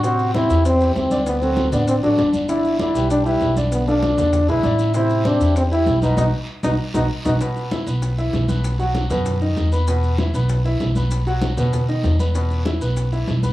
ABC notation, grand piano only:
X:1
M:4/4
L:1/8
Q:1/4=195
K:Bphr
V:1 name="Grand piano"
[C,Cc]2 [C,Cc] [E,EG]2 [E,EG]2 [D,Dd]- | [D,Dd] [F,FA]2 [D,Dd]2 [F,FA] [D,Dd]2 | [D,Dd]2 [D,Dd] [G,GB]2 [G,GB]2 [D,Dd]- | [D,Dd] [=F,=FA]2 [D,Dd]2 [^G,^GB] [D,Dd]2 |
[C,Cc]2 [C,Cc] [E,EG]2 [E,EG]2 [B,,B,B] | [B,^DF] z2 [B,DF] z [B,DF] z [B,DF] | [B,,B,B]2 [E,Ee] [B,Bb]2 [E,Ee]2 [B,Bb]- | [B,Bb] [F,Ff]2 [B,,B,B]2 [^D,^D^d]2 [B,Bb] |
[B,,B,B]2 [E,Ee] [B,Bb]2 [E,Ee]2 [B,Bb]- | [B,Bb] [F,Ff]2 [B,,B,B]2 [^D,^D^d]2 [B,Bb] | [B,,B,B]2 [E,Ee] [B,Bb]2 [E,Ee]2 [B,Bb] |]